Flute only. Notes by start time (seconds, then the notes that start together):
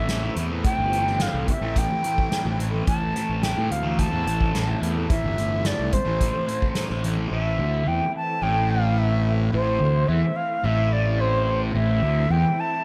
Already playing: E5
0.64 G5
1.22 F5
1.50 E5
1.78 G5
2.87 A5
3.43 G5
3.71 F5
3.99 A5
5.10 E5
5.66 D5
5.93 C5
7.32 E5
7.87 G5
8.16 A5
8.42 G5
8.70 F5
8.98 E5
9.53 C5
10.08 E5
10.36 F5
10.65 E5
10.92 D5
11.20 C5
11.76 E5
12.31 G5
12.60 A5